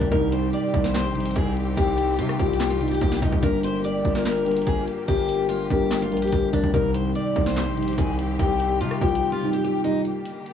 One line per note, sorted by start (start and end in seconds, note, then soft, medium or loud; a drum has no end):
0.00 0.11 G1 loud
0.00 0.11 G3 medium
0.00 6.70 G3 medium
0.00 0.14 D4 medium
0.00 6.70 G4 medium
0.00 0.14 A#4 medium
0.00 kick loud
0.10 0.51 C2 loud
0.10 0.64 C3 loud
0.10 3.39 D#3 medium
0.10 0.65 G3 medium
0.10 3.39 C4 medium
0.10 0.65 D#4 loud
0.10 0.28 A#4 loud
0.10 kick loud
0.10 closed hi-hat medium
0.32 0.49 C5 medium
0.32 closed hi-hat medium
0.53 0.82 D5 medium
0.53 closed hi-hat medium
0.73 1.06 C2 loud
0.73 1.09 C3 medium
0.73 1.09 G3 medium
0.73 1.10 D#4 medium
0.73 kick medium
0.73 closed hi-hat medium
0.84 0.93 C5 medium
0.84 snare medium
0.94 1.34 C5 medium
0.94 snare loud
0.94 clap loud
0.94 closed hi-hat medium
1.05 1.34 A#1 loud
1.14 1.85 C3 medium
1.14 1.86 G3 medium
1.14 1.86 D#4 medium
1.14 closed hi-hat medium
1.20 closed hi-hat medium
1.25 closed hi-hat medium
1.31 closed hi-hat medium
1.36 1.76 C2 loud
1.36 1.52 G#4 medium
1.36 kick loud
1.36 closed hi-hat medium
1.57 closed hi-hat medium
1.77 2.20 C2 loud
1.77 2.16 G4 loud
1.77 kick loud
1.77 closed hi-hat medium
1.98 closed hi-hat medium
2.19 2.38 C3 loud
2.19 2.35 F4 loud
2.19 closed hi-hat medium
2.29 cross-stick loud
2.39 2.99 C2 loud
2.39 2.75 C3 medium
2.39 2.75 G3 medium
2.39 2.76 F4 medium
2.39 2.69 G4 medium
2.39 kick medium
2.39 closed hi-hat soft
2.46 closed hi-hat medium
2.53 closed hi-hat medium
2.60 snare loud
2.60 clap loud
2.60 closed hi-hat medium
2.70 2.87 F4 medium
2.80 3.16 C3 medium
2.80 3.16 G3 medium
2.80 3.17 D#4 medium
2.80 closed hi-hat soft
2.88 2.99 G4 medium
2.88 closed hi-hat medium
2.95 closed hi-hat medium
3.01 3.21 C2 loud
3.01 3.18 G4 medium
3.01 kick loud
3.01 closed hi-hat loud
3.12 snare medium
3.21 3.32 C2 loud
3.21 3.39 C3 medium
3.21 3.40 G3 medium
3.21 3.39 D#4 medium
3.21 3.41 D#4 medium
3.21 kick medium
3.21 open hi-hat medium
3.32 3.42 C2 loud
3.32 kick loud
3.41 4.02 G1 loud
3.41 6.71 D3 medium
3.41 3.95 G3 loud
3.41 6.71 A#3 medium
3.41 3.96 D4 loud
3.41 3.59 A#4 loud
3.41 3.96 A#4 loud
3.41 kick loud
3.41 closed hi-hat medium
3.63 3.80 C5 medium
3.63 closed hi-hat medium
3.84 4.14 D5 medium
3.84 closed hi-hat medium
4.03 4.64 G1 loud
4.03 4.40 G3 medium
4.03 4.40 D4 medium
4.03 4.41 F4 medium
4.03 kick medium
4.03 closed hi-hat medium
4.15 4.24 A#4 medium
4.15 snare medium
4.25 4.65 A#4 medium
4.25 snare loud
4.25 clap medium
4.25 closed hi-hat medium
4.45 5.16 G3 medium
4.45 5.17 D4 medium
4.45 5.17 A#4 medium
4.45 closed hi-hat medium
4.51 closed hi-hat medium
4.57 closed hi-hat medium
4.62 closed hi-hat medium
4.67 4.87 G1 loud
4.67 4.83 G#4 medium
4.67 kick loud
4.67 closed hi-hat medium
4.88 closed hi-hat medium
5.08 5.68 G1 loud
5.08 5.47 G4 loud
5.08 kick loud
5.08 closed hi-hat medium
5.29 closed hi-hat medium
5.49 5.66 F4 loud
5.49 closed hi-hat medium
5.70 6.13 G1 loud
5.70 6.06 G3 medium
5.70 6.06 D4 medium
5.70 6.00 G4 medium
5.70 6.07 A#4 medium
5.70 kick medium
5.70 closed hi-hat medium
5.91 snare loud
5.91 clap loud
5.91 closed hi-hat medium
6.02 6.18 F4 medium
6.10 6.31 A#1 loud
6.10 6.46 G3 medium
6.10 6.47 D4 medium
6.10 6.47 A#4 medium
6.10 closed hi-hat medium
6.17 closed hi-hat medium
6.22 6.30 G4 medium
6.22 closed hi-hat medium
6.27 closed hi-hat medium
6.32 6.52 G1 loud
6.32 6.49 G4 medium
6.32 kick loud
6.32 closed hi-hat loud
6.52 6.63 G1 loud
6.52 6.70 G3 medium
6.52 6.71 D4 medium
6.52 6.70 D4 medium
6.52 6.71 A#4 medium
6.52 kick medium
6.52 closed hi-hat medium
6.64 6.73 G1 loud
6.64 kick loud
6.72 7.14 C2 loud
6.72 7.26 C3 loud
6.72 10.02 D#3 medium
6.72 7.27 G3 medium
6.72 10.02 G3 medium
6.72 10.02 C4 medium
6.72 7.27 D#4 loud
6.72 10.02 G4 medium
6.72 6.90 A#4 loud
6.72 kick loud
6.72 closed hi-hat medium
6.94 7.11 C5 medium
6.94 closed hi-hat medium
7.15 7.45 D5 medium
7.15 closed hi-hat medium
7.35 7.68 C2 loud
7.35 7.71 C3 medium
7.35 7.72 G3 medium
7.35 7.72 D#4 medium
7.35 kick medium
7.35 closed hi-hat medium
7.46 7.55 C5 medium
7.46 snare medium
7.57 7.96 C5 medium
7.57 snare loud
7.57 clap loud
7.57 closed hi-hat medium
7.67 7.96 A#1 loud
7.76 8.47 C3 medium
7.76 8.48 G3 medium
7.76 8.49 D#4 medium
7.76 closed hi-hat medium
7.82 closed hi-hat medium
7.88 closed hi-hat medium
7.93 closed hi-hat medium
7.98 8.38 C2 loud
7.98 8.14 G#4 medium
7.98 kick loud
7.98 closed hi-hat medium
8.19 closed hi-hat medium
8.39 8.82 C2 loud
8.39 8.78 G4 loud
8.39 kick loud
8.39 closed hi-hat medium
8.60 closed hi-hat medium
8.81 9.00 C3 loud
8.81 8.97 F4 medium
8.81 closed hi-hat medium
8.91 cross-stick loud
9.01 9.21 C2 loud
9.01 9.37 C3 medium
9.01 9.37 G3 medium
9.01 9.38 F4 medium
9.01 9.31 G4 medium
9.01 kick medium
9.01 closed hi-hat soft
9.08 closed hi-hat medium
9.15 closed hi-hat medium
9.32 9.49 F4 medium
9.42 9.78 C3 medium
9.42 9.78 G3 medium
9.42 9.79 D#4 medium
9.53 9.61 G4 medium
9.64 9.80 G4 medium
9.83 10.01 C3 medium
9.83 10.02 G3 medium
9.83 10.01 D#4 medium
9.83 10.03 D#4 medium
10.05 10.53 D3 medium
10.05 10.53 G3 medium
10.05 10.53 A#3 medium
10.05 10.53 G4 medium
10.05 closed hi-hat medium
10.25 closed hi-hat medium
10.46 closed hi-hat medium